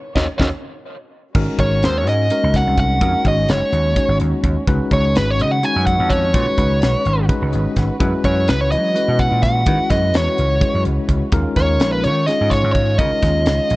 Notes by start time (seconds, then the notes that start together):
0.16 D#2 C#4 D#4 F#4 A#4 C#5 D#5, kick, snare
0.38 D#2 C#4 D#4 F#4 A#4 C#5 D#5, kick, snare
1.33 G#1 G#3 A#3 C#4 D#4 F#4 A#4, kick, crash
1.59 G#1 G#3 C#4 D#4 F#4 A#4 C#5, kick, closed hi-hat
1.83 D#2 C5, snare, closed hi-hat
1.98 C#5
2.07 G#2 D#5, snare, closed hi-hat
2.30 G#3 C#4 D#4 F#4 A#4, closed hi-hat
2.44 C#2
2.54 F#5, kick, snare, closed hi-hat
2.67 C2
2.78 F#5, kick, closed hi-hat
3.01 F2 G#3 C#4 D#4 F#4 A#4, kick, closed hi-hat
3.15 muted slap bass stroke
3.25 G#1 G#3 C#4 D#4 F#4 C#5 D#5, kick, closed hi-hat
3.49 F#1 C#5, snare, closed hi-hat
3.72 D#2, closed hi-hat
3.96 G#3 C#4 D#4 F#4 C#5, kick, closed hi-hat
4.08 G#1
4.20 D#2, closed hi-hat
4.32 muted slap bass stroke
4.44 D#2, kick, closed hi-hat
4.67 C#2 D#3 G#3 C#4 D#4 F#4 B4, kick, closed hi-hat
4.91 C#2 G#3 C#4 D#4 F#4 C#5, kick, closed hi-hat
5.16 G#1 B4, snare, closed hi-hat
5.31 C#5
5.39 C#3 D#5, closed hi-hat
5.51 F#5
5.63 G#3 C#4 D#4 F#4 C#5 G#5, closed hi-hat
5.76 F#2
5.86 F#5, kick, closed hi-hat
5.99 F2
6.10 C#5, kick, closed hi-hat
6.34 A#2 G#3 C#4 D#4 F#4 B4 C#5, kick, closed hi-hat
6.48 muted slap bass stroke
6.58 C#2 G#3 C#4 D#4 F#4 B4, kick, closed hi-hat
6.82 B1, snare, closed hi-hat
7.05 G#1, closed hi-hat
7.29 G#3 C#4 D#4 F#4 B4, kick, closed hi-hat
7.42 C#2
7.53 G#1 D#5, closed hi-hat
7.67 muted slap bass stroke
7.76 G#1 F#5, kick, snare, closed hi-hat
8.00 F#2 E3 G#3 C#4 E4 F#4 B4, kick, closed hi-hat
8.23 F#2 G#3 C#4 E4 F#4 B4 C#5, kick, closed hi-hat
8.48 C#2 B4, snare, closed hi-hat
8.61 C#5
8.72 F#3 D#5, closed hi-hat
8.95 G#3 C#4 E4 F#4 B4, closed hi-hat
9.08 B2
9.19 F#5, kick, closed hi-hat
9.31 A#2
9.43 F#5, kick, snare, closed hi-hat
9.66 D#3 G#3 C#4 E4 F#4 B4, kick, closed hi-hat
9.80 muted slap bass stroke
9.90 F#2 G#3 C#4 E4 F#4 B4 D#5, kick, snare, closed hi-hat
10.14 E2 C#5, snare, closed hi-hat
10.38 C#2, closed hi-hat
10.61 G#3 C#4 E4 F#4 C#5, kick, closed hi-hat
10.74 F#2
10.85 C#2, closed hi-hat
10.98 muted slap bass stroke
11.09 C#2, kick, closed hi-hat
11.32 D#2 D#3 G#3 C#4 D#4 F4 A#4, kick, closed hi-hat
11.56 D#2 G#3 C#4 D#4 F4 A#4 C#5, kick, snare, closed hi-hat
11.80 A#1, snare, closed hi-hat
11.92 B4
12.04 D#3 C#5, closed hi-hat
12.26 G#3 C#4 D#4 F4 G#4 D#5, snare, closed hi-hat
12.41 G#2
12.50 C#5, kick, snare, closed hi-hat
12.64 G#2
12.73 C#5, kick, closed hi-hat
12.98 C#3 G#3 C#4 D#4 F4 A#4 D#5, kick, closed hi-hat
13.11 muted slap bass stroke
13.22 D#2 G#3 C#4 D#4 F4 G#4, kick, snare, closed hi-hat
13.46 C#2, snare, closed hi-hat
13.70 A#1, closed hi-hat